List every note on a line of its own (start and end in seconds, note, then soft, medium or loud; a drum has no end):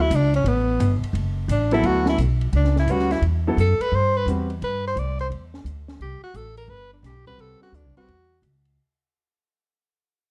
0.01 0.17 E4 medium
0.10 0.44 C#2 medium
0.10 hi-hat pedal medium
0.10 ride medium
0.15 0.35 D4 medium
0.34 0.49 C#4 medium
0.34 ride soft
0.44 0.78 A1 medium
0.44 1.04 B3 medium
0.44 ride medium
0.80 1.01 G1 loud
0.80 hi-hat pedal medium
0.80 ride medium
1.02 muted upright bass stroke soft
1.02 ride soft
1.13 1.47 F#1 medium
1.13 ride medium
1.48 1.82 A1 medium
1.48 1.72 D4 medium
1.48 hi-hat pedal medium
1.48 ride medium
1.71 2.16 F#3 medium
1.71 2.16 B3 medium
1.71 2.16 E4 medium
1.71 1.88 E4 medium
1.71 2.17 A4 medium
1.71 ride soft
1.83 2.17 D2 medium
1.83 2.08 F#4 loud
1.83 ride medium
2.06 2.19 E4 medium
2.06 snare medium
2.18 2.52 B1 medium
2.18 hi-hat pedal soft
2.18 ride medium
2.41 ride soft
2.53 2.86 C#2 medium
2.53 2.76 D4 medium
2.53 ride medium
2.65 snare soft
2.76 2.93 E4 medium
2.76 snare soft
2.87 3.21 D2 medium
2.87 3.09 G3 medium
2.87 3.09 C#4 soft
2.87 3.09 F#4 soft
2.87 3.09 B4 medium
2.87 hi-hat pedal medium
2.87 ride medium
2.92 3.13 F#4 medium
2.99 snare soft
3.11 3.23 E4 medium
3.11 snare soft
3.11 ride soft
3.21 3.56 E2 medium
3.21 ride medium
3.47 3.57 F#3 medium
3.47 3.57 B3 medium
3.47 3.57 E4 medium
3.47 3.58 A4 medium
3.57 3.78 F#2 medium
3.57 3.83 A4 medium
3.57 hi-hat pedal medium
3.57 ride medium
3.80 3.97 B4 loud
3.80 muted upright bass stroke soft
3.80 ride medium
3.92 4.25 G2 medium
3.92 4.19 C5 loud
4.17 4.28 B4 medium
4.26 4.60 E2 medium
4.26 4.48 G3 medium
4.26 4.48 C4 soft
4.26 4.48 F#4 soft
4.26 4.48 B4 medium
4.26 hi-hat pedal medium
4.26 ride medium
4.50 ride soft
4.62 4.95 G2 medium
4.62 4.84 B4 medium
4.62 ride medium
4.87 5.01 C5 loud
4.96 5.30 C2 loud
4.96 5.20 D5 loud
4.96 hi-hat pedal medium
4.96 ride medium
5.19 5.27 C5 loud
5.19 ride soft
5.30 5.64 E2 medium
5.30 ride medium
5.54 snare soft
5.64 5.99 D2 medium
5.64 hi-hat pedal medium
5.64 ride medium
5.88 snare medium
6.00 6.21 C2 medium
6.00 6.22 G4 medium
6.00 ride medium
6.24 6.38 F#4 loud
6.34 6.67 A1 medium
6.34 6.57 A4 medium
6.34 hi-hat pedal medium
6.34 ride medium
6.57 6.71 A#4 medium
6.57 ride medium
6.68 7.02 G1 medium
6.68 6.92 B4 loud
6.94 7.08 D4 medium
7.02 7.37 B1 medium
7.02 7.27 G4 medium
7.02 snare soft
7.02 hi-hat pedal medium
7.02 ride medium
7.27 7.71 G3 medium
7.27 7.71 C4 medium
7.27 7.71 F#4 soft
7.27 7.43 B4 loud
7.27 7.72 B4 medium
7.27 kick soft
7.27 ride soft
7.38 7.60 C2 medium
7.38 7.62 A4 loud
7.38 ride medium
7.62 7.77 F#4 medium
7.62 snare soft
7.72 7.84 D2 loud
7.72 7.97 D4 medium
7.72 hi-hat pedal medium
7.72 ride medium
7.84 7.96 C2 soft
7.97 8.08 B1 medium
7.97 8.08 G3 medium
7.97 8.07 C4 medium
7.97 8.08 F#4 medium
7.97 8.40 F#4 medium
7.97 8.08 B4 medium
7.97 ride soft
8.08 8.41 E2 medium
8.08 ride medium
8.42 8.76 C#2 medium
8.42 hi-hat pedal soft
8.42 ride medium
8.65 ride soft